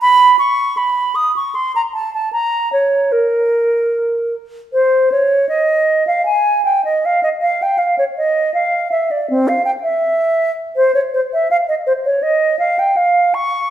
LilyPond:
\new Staff \with { instrumentName = "Flute" } { \time 3/4 \key des \major \tempo 4 = 79 ces'''8 des'''8 ces'''8 ees'''16 des'''16 c'''16 bes''16 a''16 a''16 | bes''8 des''8 bes'4. r8 | \key f \minor c''8 des''8 ees''8. f''16 aes''8 g''16 ees''16 | f''16 ees''16 f''16 g''16 f''16 des''16 ees''8 f''8 e''16 d''16 |
c'16 f''16 g''16 e''4~ e''16 c''16 des''16 c''16 e''16 | f''16 ees''16 c''16 des''16 ees''8 f''16 g''16 f''8 des'''8 | }